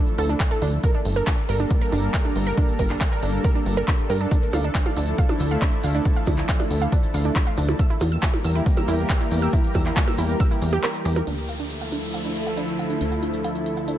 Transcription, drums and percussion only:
0.08 closed hi-hat
0.18 open hi-hat
0.29 closed hi-hat
0.40 kick, clap, closed hi-hat
0.51 closed hi-hat
0.62 open hi-hat
0.73 closed hi-hat
0.84 kick, closed hi-hat
0.94 closed hi-hat
1.05 open hi-hat
1.16 closed hi-hat
1.27 kick, clap, closed hi-hat
1.38 closed hi-hat
1.49 open hi-hat
1.60 closed hi-hat
1.70 kick, closed hi-hat
1.81 closed hi-hat
1.92 open hi-hat
2.03 closed hi-hat
2.14 kick, clap, closed hi-hat
2.25 closed hi-hat
2.36 open hi-hat
2.47 closed hi-hat
2.57 kick, closed hi-hat
2.68 closed hi-hat
2.79 kick, open hi-hat
2.90 clap, closed hi-hat
3.01 kick, clap, closed hi-hat
3.12 closed hi-hat
3.23 open hi-hat
3.33 closed hi-hat
3.44 kick, closed hi-hat
3.55 closed hi-hat
3.66 open hi-hat
3.77 closed hi-hat
3.88 kick, clap, closed hi-hat
3.99 closed hi-hat
4.10 open hi-hat
4.21 closed hi-hat
4.31 kick, closed hi-hat, shaker
4.42 closed hi-hat, shaker
4.53 open hi-hat, percussion blips, shaker
4.64 closed hi-hat, shaker
4.75 kick, clap, closed hi-hat, shaker
4.86 closed hi-hat, percussion blips
4.96 open hi-hat, shaker
5.07 closed hi-hat, shaker
5.18 kick, closed hi-hat, shaker
5.29 closed hi-hat, percussion blips, shaker
5.40 open hi-hat, shaker
5.51 closed hi-hat, shaker
5.62 kick, clap, closed hi-hat, shaker
5.73 closed hi-hat
5.83 open hi-hat, shaker
5.95 closed hi-hat, shaker
6.05 kick, closed hi-hat, shaker
6.16 closed hi-hat, shaker
6.26 kick, open hi-hat, percussion blips, shaker
6.38 clap, closed hi-hat, shaker
6.49 kick, clap, closed hi-hat, shaker
6.60 closed hi-hat, percussion blips
6.71 open hi-hat, shaker
6.81 closed hi-hat, shaker
6.92 kick, closed hi-hat, shaker
7.03 closed hi-hat, shaker
7.14 open hi-hat, shaker
7.25 closed hi-hat, shaker
7.35 kick, clap, closed hi-hat, shaker
7.47 closed hi-hat
7.57 open hi-hat, shaker
7.68 percussion blips, shaker
7.79 kick, closed hi-hat, shaker
7.90 closed hi-hat, shaker
8.01 open hi-hat, percussion blips, shaker
8.11 closed hi-hat, shaker
8.23 kick, clap, closed hi-hat, shaker
8.34 closed hi-hat, percussion blips
8.44 open hi-hat, shaker
8.55 closed hi-hat, shaker
8.66 kick, closed hi-hat, shaker
8.77 closed hi-hat, percussion blips, shaker
8.88 open hi-hat, shaker
8.99 closed hi-hat, shaker
9.09 kick, clap, closed hi-hat, shaker
9.21 closed hi-hat
9.31 open hi-hat, shaker
9.42 closed hi-hat, shaker
9.53 kick, closed hi-hat, shaker
9.64 closed hi-hat, shaker
9.74 kick, open hi-hat, percussion blips, shaker
9.86 clap, closed hi-hat, shaker
9.97 kick, clap, closed hi-hat, shaker
10.08 closed hi-hat, percussion blips, shaker
10.18 open hi-hat, shaker
10.29 closed hi-hat, shaker
10.40 kick, closed hi-hat, shaker
10.51 closed hi-hat, shaker
10.61 open hi-hat, shaker
10.73 closed hi-hat, shaker
10.84 clap, closed hi-hat, shaker
10.95 closed hi-hat, shaker
11.05 open hi-hat, shaker
11.16 closed hi-hat, percussion blips, shaker
11.27 closed hi-hat
11.38 closed hi-hat
11.49 closed hi-hat
11.60 closed hi-hat
11.71 closed hi-hat
11.81 closed hi-hat
11.92 closed hi-hat
12.03 closed hi-hat
12.14 closed hi-hat
12.25 closed hi-hat
12.36 closed hi-hat
12.47 closed hi-hat
12.57 closed hi-hat
12.68 closed hi-hat
12.79 closed hi-hat
12.90 closed hi-hat
13.01 closed hi-hat
13.12 closed hi-hat
13.23 closed hi-hat
13.34 closed hi-hat
13.44 closed hi-hat
13.55 closed hi-hat
13.66 closed hi-hat
13.77 closed hi-hat
13.88 closed hi-hat

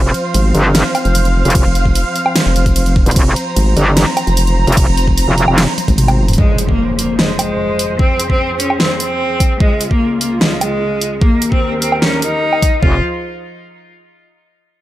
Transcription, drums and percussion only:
0.14 closed hi-hat
0.34 closed hi-hat, crash
0.55 closed hi-hat
0.75 snare, closed hi-hat, crash
0.95 closed hi-hat, low woodblock
1.05 closed hi-hat
1.15 closed hi-hat, crash
1.25 closed hi-hat
1.45 closed hi-hat
1.50 closed hi-hat
1.55 kick, closed hi-hat, crash
1.75 closed hi-hat
1.85 kick
1.95 closed hi-hat, crash
2.16 closed hi-hat
2.26 low woodblock
2.36 snare, closed hi-hat, crash
2.56 closed hi-hat
2.66 kick, closed hi-hat
2.76 closed hi-hat, crash
2.86 closed hi-hat
2.96 kick
3.06 closed hi-hat
3.11 closed hi-hat
3.16 kick, closed hi-hat, crash
3.36 closed hi-hat
3.56 closed hi-hat, crash
3.77 closed hi-hat
3.97 snare, closed hi-hat, crash
4.17 closed hi-hat, low woodblock
4.27 closed hi-hat
4.37 closed hi-hat, crash
4.47 closed hi-hat
4.67 closed hi-hat
4.72 closed hi-hat
4.77 kick, closed hi-hat, crash
4.97 closed hi-hat
5.08 kick
5.18 closed hi-hat, crash
5.38 closed hi-hat
5.48 low woodblock
5.58 snare, closed hi-hat, crash
5.78 closed hi-hat, high tom
5.88 kick, closed hi-hat, high tom
5.98 closed hi-hat, mid tom, crash
6.08 closed hi-hat, mid tom, low woodblock
6.28 closed hi-hat, mid tom
6.33 closed hi-hat
6.38 kick
6.58 closed hi-hat
6.69 kick
6.99 closed hi-hat
7.19 snare
7.39 closed hi-hat, low woodblock
7.79 closed hi-hat
7.99 kick
8.20 closed hi-hat
8.30 kick
8.60 closed hi-hat
8.70 low woodblock
8.80 snare
9.00 closed hi-hat
9.40 kick, closed hi-hat
9.60 kick
9.81 closed hi-hat
9.91 kick
10.21 closed hi-hat
10.41 snare
10.61 closed hi-hat, low woodblock
11.01 closed hi-hat
11.22 kick
11.42 closed hi-hat
11.52 kick
11.82 closed hi-hat
11.92 low woodblock
12.02 snare
12.22 closed hi-hat
12.53 low woodblock
12.62 kick, closed hi-hat
12.83 kick, floor tom

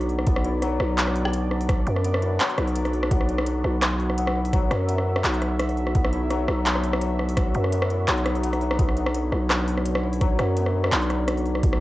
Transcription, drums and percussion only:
0.01 open hi-hat
0.09 open hi-hat
0.19 cross-stick
0.27 kick, closed hi-hat
0.36 cross-stick
0.45 closed hi-hat
0.62 cross-stick, closed hi-hat
0.80 cross-stick
0.98 clap, closed hi-hat
1.08 cross-stick
1.16 open hi-hat
1.25 cross-stick
1.33 closed hi-hat
1.51 cross-stick
1.61 open hi-hat
1.69 kick, cross-stick, closed hi-hat
1.87 closed hi-hat
1.96 cross-stick
2.04 closed hi-hat
2.14 cross-stick
2.22 closed hi-hat
2.40 cross-stick, clap, closed hi-hat
2.50 open hi-hat
2.58 cross-stick, closed hi-hat
2.67 open hi-hat
2.76 closed hi-hat
2.85 cross-stick, open hi-hat
2.93 open hi-hat
3.03 cross-stick
3.11 kick, closed hi-hat
3.21 cross-stick
3.29 closed hi-hat
3.38 cross-stick
3.46 closed hi-hat
3.64 cross-stick
3.82 cross-stick, clap, closed hi-hat
4.00 open hi-hat
4.10 cross-stick
4.18 closed hi-hat
4.27 cross-stick
4.45 open hi-hat
4.53 kick, cross-stick, closed hi-hat
4.71 cross-stick, closed hi-hat
4.89 closed hi-hat
4.98 cross-stick
5.16 cross-stick
5.24 clap, closed hi-hat
5.34 open hi-hat
5.42 cross-stick, closed hi-hat
5.59 cross-stick, closed hi-hat
5.69 open hi-hat
5.77 open hi-hat
5.87 cross-stick
5.95 kick, closed hi-hat
6.05 cross-stick
6.13 closed hi-hat
6.30 cross-stick, closed hi-hat
6.48 cross-stick
6.66 clap, closed hi-hat
6.75 cross-stick
6.84 open hi-hat
6.93 cross-stick
7.01 closed hi-hat
7.19 cross-stick
7.29 open hi-hat
7.37 kick, cross-stick, closed hi-hat
7.55 closed hi-hat
7.64 cross-stick
7.72 closed hi-hat
7.82 cross-stick
7.90 closed hi-hat
8.08 cross-stick, clap, closed hi-hat
8.18 open hi-hat
8.26 cross-stick, closed hi-hat
8.35 open hi-hat
8.43 closed hi-hat
8.53 cross-stick, open hi-hat
8.61 open hi-hat
8.71 cross-stick
8.79 kick, closed hi-hat
8.89 cross-stick
8.97 closed hi-hat
9.07 cross-stick
9.15 closed hi-hat
9.32 cross-stick
9.50 cross-stick, clap, closed hi-hat
9.68 open hi-hat
9.78 cross-stick
9.86 closed hi-hat
9.95 cross-stick
10.13 open hi-hat
10.21 kick, cross-stick, closed hi-hat
10.39 cross-stick, closed hi-hat
10.57 closed hi-hat
10.66 cross-stick
10.84 cross-stick
10.92 clap, closed hi-hat
11.02 open hi-hat
11.10 cross-stick, closed hi-hat
11.28 cross-stick, closed hi-hat
11.37 open hi-hat
11.46 open hi-hat
11.55 cross-stick
11.63 kick, closed hi-hat
11.73 cross-stick

